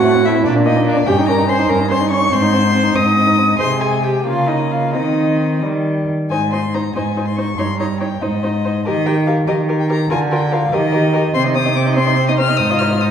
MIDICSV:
0, 0, Header, 1, 5, 480
1, 0, Start_track
1, 0, Key_signature, -4, "major"
1, 0, Tempo, 417537
1, 1235, Time_signature, 6, 3, 24, 8
1, 4128, Tempo, 453172
1, 7008, Tempo, 427350
1, 7968, Tempo, 417827
1, 14796, End_track
2, 0, Start_track
2, 0, Title_t, "Violin"
2, 0, Program_c, 0, 40
2, 0, Note_on_c, 0, 78, 90
2, 292, Note_on_c, 0, 76, 75
2, 309, Note_off_c, 0, 78, 0
2, 508, Note_off_c, 0, 76, 0
2, 515, Note_on_c, 0, 74, 80
2, 607, Note_off_c, 0, 74, 0
2, 749, Note_on_c, 0, 75, 82
2, 987, Note_off_c, 0, 75, 0
2, 996, Note_on_c, 0, 74, 84
2, 1227, Note_on_c, 0, 79, 108
2, 1244, Note_off_c, 0, 74, 0
2, 1469, Note_off_c, 0, 79, 0
2, 1476, Note_on_c, 0, 82, 85
2, 1714, Note_on_c, 0, 84, 75
2, 1731, Note_off_c, 0, 82, 0
2, 1950, Note_on_c, 0, 82, 80
2, 1968, Note_off_c, 0, 84, 0
2, 2183, Note_off_c, 0, 82, 0
2, 2190, Note_on_c, 0, 84, 88
2, 2420, Note_off_c, 0, 84, 0
2, 2427, Note_on_c, 0, 85, 97
2, 2675, Note_on_c, 0, 84, 103
2, 2692, Note_off_c, 0, 85, 0
2, 3398, Note_on_c, 0, 87, 96
2, 3415, Note_off_c, 0, 84, 0
2, 4120, Note_off_c, 0, 87, 0
2, 4126, Note_on_c, 0, 84, 95
2, 4363, Note_on_c, 0, 80, 75
2, 4379, Note_off_c, 0, 84, 0
2, 4595, Note_on_c, 0, 79, 65
2, 4611, Note_off_c, 0, 80, 0
2, 4826, Note_off_c, 0, 79, 0
2, 4832, Note_on_c, 0, 77, 72
2, 5075, Note_on_c, 0, 75, 64
2, 5091, Note_off_c, 0, 77, 0
2, 5321, Note_on_c, 0, 77, 67
2, 5336, Note_off_c, 0, 75, 0
2, 5559, Note_off_c, 0, 77, 0
2, 5567, Note_on_c, 0, 75, 61
2, 6280, Note_off_c, 0, 75, 0
2, 7002, Note_on_c, 0, 80, 75
2, 7229, Note_off_c, 0, 80, 0
2, 7258, Note_on_c, 0, 84, 60
2, 7496, Note_on_c, 0, 82, 56
2, 7513, Note_off_c, 0, 84, 0
2, 7729, Note_off_c, 0, 82, 0
2, 7736, Note_on_c, 0, 80, 61
2, 8084, Note_off_c, 0, 80, 0
2, 8091, Note_on_c, 0, 84, 54
2, 8201, Note_on_c, 0, 85, 69
2, 8219, Note_off_c, 0, 84, 0
2, 8448, Note_on_c, 0, 84, 75
2, 8465, Note_off_c, 0, 85, 0
2, 8689, Note_off_c, 0, 84, 0
2, 8696, Note_on_c, 0, 82, 58
2, 8923, Note_off_c, 0, 82, 0
2, 8930, Note_on_c, 0, 79, 57
2, 9178, Note_on_c, 0, 75, 64
2, 9196, Note_off_c, 0, 79, 0
2, 9901, Note_off_c, 0, 75, 0
2, 9908, Note_on_c, 0, 75, 83
2, 10148, Note_on_c, 0, 79, 71
2, 10166, Note_off_c, 0, 75, 0
2, 10378, Note_off_c, 0, 79, 0
2, 10385, Note_on_c, 0, 77, 62
2, 10477, Note_off_c, 0, 77, 0
2, 10621, Note_on_c, 0, 75, 64
2, 10713, Note_off_c, 0, 75, 0
2, 10991, Note_on_c, 0, 79, 62
2, 11107, Note_off_c, 0, 79, 0
2, 11114, Note_on_c, 0, 82, 76
2, 11348, Note_off_c, 0, 82, 0
2, 11353, Note_on_c, 0, 80, 86
2, 11445, Note_off_c, 0, 80, 0
2, 11590, Note_on_c, 0, 79, 70
2, 11824, Note_on_c, 0, 77, 77
2, 11841, Note_off_c, 0, 79, 0
2, 12062, Note_on_c, 0, 75, 81
2, 12079, Note_off_c, 0, 77, 0
2, 12758, Note_off_c, 0, 75, 0
2, 12765, Note_on_c, 0, 84, 104
2, 12857, Note_off_c, 0, 84, 0
2, 13000, Note_on_c, 0, 87, 87
2, 13251, Note_on_c, 0, 86, 77
2, 13268, Note_off_c, 0, 87, 0
2, 13461, Note_off_c, 0, 86, 0
2, 13468, Note_on_c, 0, 84, 92
2, 13829, Note_off_c, 0, 84, 0
2, 13846, Note_on_c, 0, 87, 72
2, 13895, Note_off_c, 0, 87, 0
2, 13955, Note_on_c, 0, 89, 111
2, 14181, Note_on_c, 0, 87, 107
2, 14198, Note_off_c, 0, 89, 0
2, 14426, Note_on_c, 0, 89, 94
2, 14444, Note_off_c, 0, 87, 0
2, 14681, Note_on_c, 0, 87, 86
2, 14698, Note_off_c, 0, 89, 0
2, 14796, Note_off_c, 0, 87, 0
2, 14796, End_track
3, 0, Start_track
3, 0, Title_t, "Violin"
3, 0, Program_c, 1, 40
3, 39, Note_on_c, 1, 57, 58
3, 162, Note_on_c, 1, 60, 53
3, 179, Note_off_c, 1, 57, 0
3, 272, Note_off_c, 1, 60, 0
3, 279, Note_on_c, 1, 57, 51
3, 401, Note_on_c, 1, 60, 52
3, 419, Note_off_c, 1, 57, 0
3, 511, Note_off_c, 1, 60, 0
3, 518, Note_on_c, 1, 58, 50
3, 639, Note_on_c, 1, 62, 48
3, 656, Note_off_c, 1, 58, 0
3, 755, Note_on_c, 1, 58, 51
3, 773, Note_off_c, 1, 62, 0
3, 874, Note_on_c, 1, 62, 48
3, 891, Note_off_c, 1, 58, 0
3, 987, Note_off_c, 1, 62, 0
3, 994, Note_on_c, 1, 58, 55
3, 1106, Note_on_c, 1, 62, 51
3, 1123, Note_off_c, 1, 58, 0
3, 1226, Note_off_c, 1, 62, 0
3, 1232, Note_on_c, 1, 61, 57
3, 1359, Note_on_c, 1, 63, 52
3, 1376, Note_off_c, 1, 61, 0
3, 1470, Note_on_c, 1, 61, 53
3, 1487, Note_off_c, 1, 63, 0
3, 1583, Note_on_c, 1, 63, 49
3, 1600, Note_off_c, 1, 61, 0
3, 1698, Note_off_c, 1, 63, 0
3, 1705, Note_on_c, 1, 61, 56
3, 1826, Note_on_c, 1, 63, 48
3, 1843, Note_off_c, 1, 61, 0
3, 1943, Note_on_c, 1, 61, 53
3, 1960, Note_off_c, 1, 63, 0
3, 2062, Note_on_c, 1, 63, 51
3, 2079, Note_off_c, 1, 61, 0
3, 2174, Note_off_c, 1, 63, 0
3, 2181, Note_on_c, 1, 61, 49
3, 2309, Note_on_c, 1, 63, 51
3, 2326, Note_off_c, 1, 61, 0
3, 2418, Note_on_c, 1, 61, 47
3, 2436, Note_off_c, 1, 63, 0
3, 2537, Note_on_c, 1, 63, 45
3, 2555, Note_off_c, 1, 61, 0
3, 2656, Note_off_c, 1, 63, 0
3, 2663, Note_on_c, 1, 60, 56
3, 2777, Note_on_c, 1, 63, 52
3, 2795, Note_off_c, 1, 60, 0
3, 2906, Note_on_c, 1, 60, 54
3, 2924, Note_off_c, 1, 63, 0
3, 3025, Note_on_c, 1, 63, 53
3, 3043, Note_off_c, 1, 60, 0
3, 3135, Note_off_c, 1, 63, 0
3, 3142, Note_on_c, 1, 60, 49
3, 3257, Note_on_c, 1, 63, 53
3, 3274, Note_off_c, 1, 60, 0
3, 3379, Note_on_c, 1, 60, 49
3, 3396, Note_off_c, 1, 63, 0
3, 3510, Note_on_c, 1, 63, 49
3, 3528, Note_off_c, 1, 60, 0
3, 3626, Note_off_c, 1, 63, 0
3, 3633, Note_on_c, 1, 60, 46
3, 3754, Note_on_c, 1, 63, 50
3, 3771, Note_off_c, 1, 60, 0
3, 3887, Note_on_c, 1, 60, 42
3, 3904, Note_off_c, 1, 63, 0
3, 4005, Note_on_c, 1, 63, 43
3, 4022, Note_off_c, 1, 60, 0
3, 4118, Note_off_c, 1, 63, 0
3, 4125, Note_on_c, 1, 56, 53
3, 4786, Note_off_c, 1, 56, 0
3, 4824, Note_on_c, 1, 58, 48
3, 5554, Note_on_c, 1, 60, 39
3, 5570, Note_off_c, 1, 58, 0
3, 6278, Note_on_c, 1, 55, 42
3, 6294, Note_off_c, 1, 60, 0
3, 6784, Note_off_c, 1, 55, 0
3, 7004, Note_on_c, 1, 72, 44
3, 7094, Note_off_c, 1, 72, 0
3, 7248, Note_on_c, 1, 72, 39
3, 7338, Note_off_c, 1, 72, 0
3, 7492, Note_on_c, 1, 72, 38
3, 7582, Note_off_c, 1, 72, 0
3, 7736, Note_on_c, 1, 72, 40
3, 7825, Note_off_c, 1, 72, 0
3, 7972, Note_on_c, 1, 72, 37
3, 8064, Note_off_c, 1, 72, 0
3, 8213, Note_on_c, 1, 72, 39
3, 8305, Note_off_c, 1, 72, 0
3, 8456, Note_on_c, 1, 73, 45
3, 8548, Note_off_c, 1, 73, 0
3, 8696, Note_on_c, 1, 73, 45
3, 8788, Note_off_c, 1, 73, 0
3, 8933, Note_on_c, 1, 73, 41
3, 9024, Note_off_c, 1, 73, 0
3, 9181, Note_on_c, 1, 72, 39
3, 9273, Note_off_c, 1, 72, 0
3, 9415, Note_on_c, 1, 72, 41
3, 9507, Note_off_c, 1, 72, 0
3, 9671, Note_on_c, 1, 72, 38
3, 9763, Note_off_c, 1, 72, 0
3, 9906, Note_on_c, 1, 70, 48
3, 9998, Note_off_c, 1, 70, 0
3, 10142, Note_on_c, 1, 70, 51
3, 10234, Note_off_c, 1, 70, 0
3, 10390, Note_on_c, 1, 70, 39
3, 10482, Note_off_c, 1, 70, 0
3, 10624, Note_on_c, 1, 70, 43
3, 10716, Note_off_c, 1, 70, 0
3, 10865, Note_on_c, 1, 70, 46
3, 10957, Note_off_c, 1, 70, 0
3, 11101, Note_on_c, 1, 70, 44
3, 11193, Note_off_c, 1, 70, 0
3, 11336, Note_on_c, 1, 70, 58
3, 11428, Note_off_c, 1, 70, 0
3, 11581, Note_on_c, 1, 70, 54
3, 11673, Note_off_c, 1, 70, 0
3, 11821, Note_on_c, 1, 70, 44
3, 11913, Note_off_c, 1, 70, 0
3, 12051, Note_on_c, 1, 70, 52
3, 12143, Note_off_c, 1, 70, 0
3, 12280, Note_on_c, 1, 70, 50
3, 12372, Note_off_c, 1, 70, 0
3, 12523, Note_on_c, 1, 70, 55
3, 12615, Note_off_c, 1, 70, 0
3, 12763, Note_on_c, 1, 72, 58
3, 12879, Note_on_c, 1, 75, 52
3, 12897, Note_off_c, 1, 72, 0
3, 13005, Note_on_c, 1, 72, 57
3, 13023, Note_off_c, 1, 75, 0
3, 13125, Note_on_c, 1, 75, 52
3, 13143, Note_off_c, 1, 72, 0
3, 13238, Note_off_c, 1, 75, 0
3, 13244, Note_on_c, 1, 72, 47
3, 13359, Note_on_c, 1, 75, 58
3, 13377, Note_off_c, 1, 72, 0
3, 13478, Note_on_c, 1, 72, 58
3, 13495, Note_off_c, 1, 75, 0
3, 13594, Note_on_c, 1, 75, 54
3, 13611, Note_off_c, 1, 72, 0
3, 13715, Note_off_c, 1, 75, 0
3, 13722, Note_on_c, 1, 72, 55
3, 13848, Note_on_c, 1, 75, 56
3, 13865, Note_off_c, 1, 72, 0
3, 13959, Note_on_c, 1, 72, 55
3, 13976, Note_off_c, 1, 75, 0
3, 14077, Note_on_c, 1, 75, 53
3, 14094, Note_off_c, 1, 72, 0
3, 14204, Note_off_c, 1, 75, 0
3, 14211, Note_on_c, 1, 72, 62
3, 14327, Note_on_c, 1, 75, 59
3, 14344, Note_off_c, 1, 72, 0
3, 14446, Note_on_c, 1, 72, 63
3, 14464, Note_off_c, 1, 75, 0
3, 14556, Note_on_c, 1, 75, 58
3, 14574, Note_off_c, 1, 72, 0
3, 14673, Note_off_c, 1, 75, 0
3, 14680, Note_on_c, 1, 72, 51
3, 14796, Note_off_c, 1, 72, 0
3, 14796, End_track
4, 0, Start_track
4, 0, Title_t, "Viola"
4, 0, Program_c, 2, 41
4, 0, Note_on_c, 2, 66, 61
4, 293, Note_on_c, 2, 64, 65
4, 310, Note_off_c, 2, 66, 0
4, 528, Note_off_c, 2, 64, 0
4, 533, Note_on_c, 2, 62, 74
4, 625, Note_off_c, 2, 62, 0
4, 767, Note_on_c, 2, 63, 66
4, 996, Note_off_c, 2, 63, 0
4, 1002, Note_on_c, 2, 62, 62
4, 1094, Note_off_c, 2, 62, 0
4, 1234, Note_on_c, 2, 67, 76
4, 1326, Note_off_c, 2, 67, 0
4, 1474, Note_on_c, 2, 70, 67
4, 1703, Note_off_c, 2, 70, 0
4, 1710, Note_on_c, 2, 72, 68
4, 1940, Note_off_c, 2, 72, 0
4, 1947, Note_on_c, 2, 70, 75
4, 2039, Note_off_c, 2, 70, 0
4, 2188, Note_on_c, 2, 72, 74
4, 2280, Note_off_c, 2, 72, 0
4, 2425, Note_on_c, 2, 73, 71
4, 2671, Note_on_c, 2, 72, 79
4, 2688, Note_off_c, 2, 73, 0
4, 3395, Note_on_c, 2, 75, 83
4, 3412, Note_off_c, 2, 72, 0
4, 4125, Note_off_c, 2, 75, 0
4, 4132, Note_on_c, 2, 72, 72
4, 4217, Note_off_c, 2, 72, 0
4, 4373, Note_on_c, 2, 68, 54
4, 4596, Note_off_c, 2, 68, 0
4, 4610, Note_on_c, 2, 67, 54
4, 4833, Note_off_c, 2, 67, 0
4, 4841, Note_on_c, 2, 65, 65
4, 5073, Note_on_c, 2, 63, 55
4, 5088, Note_off_c, 2, 65, 0
4, 5308, Note_off_c, 2, 63, 0
4, 5314, Note_on_c, 2, 65, 48
4, 5555, Note_on_c, 2, 63, 48
4, 5571, Note_off_c, 2, 65, 0
4, 6288, Note_off_c, 2, 63, 0
4, 7005, Note_on_c, 2, 63, 38
4, 7095, Note_off_c, 2, 63, 0
4, 7254, Note_on_c, 2, 63, 39
4, 7344, Note_off_c, 2, 63, 0
4, 7492, Note_on_c, 2, 63, 38
4, 7582, Note_off_c, 2, 63, 0
4, 7729, Note_on_c, 2, 63, 42
4, 7819, Note_off_c, 2, 63, 0
4, 7970, Note_on_c, 2, 63, 35
4, 8061, Note_off_c, 2, 63, 0
4, 8210, Note_on_c, 2, 63, 35
4, 8302, Note_off_c, 2, 63, 0
4, 8451, Note_on_c, 2, 63, 43
4, 8543, Note_off_c, 2, 63, 0
4, 8690, Note_on_c, 2, 63, 39
4, 8782, Note_off_c, 2, 63, 0
4, 8929, Note_on_c, 2, 63, 39
4, 9021, Note_off_c, 2, 63, 0
4, 9178, Note_on_c, 2, 63, 46
4, 9270, Note_off_c, 2, 63, 0
4, 9428, Note_on_c, 2, 63, 42
4, 9520, Note_off_c, 2, 63, 0
4, 9670, Note_on_c, 2, 63, 37
4, 9762, Note_off_c, 2, 63, 0
4, 9919, Note_on_c, 2, 67, 47
4, 10011, Note_off_c, 2, 67, 0
4, 10154, Note_on_c, 2, 67, 44
4, 10246, Note_off_c, 2, 67, 0
4, 10384, Note_on_c, 2, 67, 39
4, 10476, Note_off_c, 2, 67, 0
4, 10619, Note_on_c, 2, 67, 52
4, 10711, Note_off_c, 2, 67, 0
4, 10859, Note_on_c, 2, 67, 46
4, 10951, Note_off_c, 2, 67, 0
4, 11103, Note_on_c, 2, 67, 46
4, 11195, Note_off_c, 2, 67, 0
4, 11351, Note_on_c, 2, 65, 56
4, 11442, Note_off_c, 2, 65, 0
4, 11589, Note_on_c, 2, 65, 51
4, 11680, Note_off_c, 2, 65, 0
4, 11830, Note_on_c, 2, 65, 47
4, 11922, Note_off_c, 2, 65, 0
4, 12061, Note_on_c, 2, 67, 64
4, 12153, Note_off_c, 2, 67, 0
4, 12306, Note_on_c, 2, 67, 58
4, 12398, Note_off_c, 2, 67, 0
4, 12543, Note_on_c, 2, 67, 58
4, 12635, Note_off_c, 2, 67, 0
4, 12780, Note_on_c, 2, 60, 63
4, 12898, Note_on_c, 2, 63, 53
4, 12915, Note_off_c, 2, 60, 0
4, 13010, Note_on_c, 2, 60, 60
4, 13028, Note_off_c, 2, 63, 0
4, 13129, Note_on_c, 2, 63, 49
4, 13146, Note_off_c, 2, 60, 0
4, 13249, Note_off_c, 2, 63, 0
4, 13256, Note_on_c, 2, 60, 50
4, 13371, Note_on_c, 2, 63, 52
4, 13388, Note_off_c, 2, 60, 0
4, 13486, Note_on_c, 2, 60, 60
4, 13503, Note_off_c, 2, 63, 0
4, 13602, Note_on_c, 2, 63, 52
4, 13619, Note_off_c, 2, 60, 0
4, 13720, Note_off_c, 2, 63, 0
4, 13726, Note_on_c, 2, 60, 59
4, 13846, Note_on_c, 2, 63, 52
4, 13864, Note_off_c, 2, 60, 0
4, 13975, Note_on_c, 2, 60, 53
4, 13993, Note_off_c, 2, 63, 0
4, 14090, Note_on_c, 2, 63, 53
4, 14107, Note_off_c, 2, 60, 0
4, 14203, Note_off_c, 2, 63, 0
4, 14210, Note_on_c, 2, 63, 59
4, 14335, Note_on_c, 2, 65, 58
4, 14353, Note_off_c, 2, 63, 0
4, 14458, Note_on_c, 2, 63, 57
4, 14475, Note_off_c, 2, 65, 0
4, 14574, Note_on_c, 2, 65, 56
4, 14592, Note_off_c, 2, 63, 0
4, 14691, Note_off_c, 2, 65, 0
4, 14699, Note_on_c, 2, 63, 55
4, 14796, Note_off_c, 2, 63, 0
4, 14796, End_track
5, 0, Start_track
5, 0, Title_t, "Cello"
5, 0, Program_c, 3, 42
5, 0, Note_on_c, 3, 45, 78
5, 447, Note_off_c, 3, 45, 0
5, 539, Note_on_c, 3, 46, 73
5, 1159, Note_off_c, 3, 46, 0
5, 1243, Note_on_c, 3, 43, 69
5, 1868, Note_off_c, 3, 43, 0
5, 1959, Note_on_c, 3, 43, 65
5, 2586, Note_off_c, 3, 43, 0
5, 2671, Note_on_c, 3, 44, 72
5, 3305, Note_off_c, 3, 44, 0
5, 3389, Note_on_c, 3, 44, 60
5, 4039, Note_off_c, 3, 44, 0
5, 4128, Note_on_c, 3, 48, 54
5, 4787, Note_off_c, 3, 48, 0
5, 4836, Note_on_c, 3, 49, 48
5, 5558, Note_on_c, 3, 51, 49
5, 5574, Note_off_c, 3, 49, 0
5, 6283, Note_off_c, 3, 51, 0
5, 6289, Note_on_c, 3, 51, 41
5, 6779, Note_off_c, 3, 51, 0
5, 7008, Note_on_c, 3, 44, 53
5, 7645, Note_off_c, 3, 44, 0
5, 7732, Note_on_c, 3, 44, 50
5, 8366, Note_off_c, 3, 44, 0
5, 8451, Note_on_c, 3, 43, 57
5, 9095, Note_off_c, 3, 43, 0
5, 9185, Note_on_c, 3, 44, 49
5, 9829, Note_off_c, 3, 44, 0
5, 9915, Note_on_c, 3, 51, 61
5, 10542, Note_off_c, 3, 51, 0
5, 10626, Note_on_c, 3, 51, 52
5, 11264, Note_off_c, 3, 51, 0
5, 11345, Note_on_c, 3, 50, 61
5, 11977, Note_off_c, 3, 50, 0
5, 12056, Note_on_c, 3, 51, 69
5, 12684, Note_off_c, 3, 51, 0
5, 12765, Note_on_c, 3, 48, 69
5, 14205, Note_on_c, 3, 44, 70
5, 14222, Note_off_c, 3, 48, 0
5, 14796, Note_off_c, 3, 44, 0
5, 14796, End_track
0, 0, End_of_file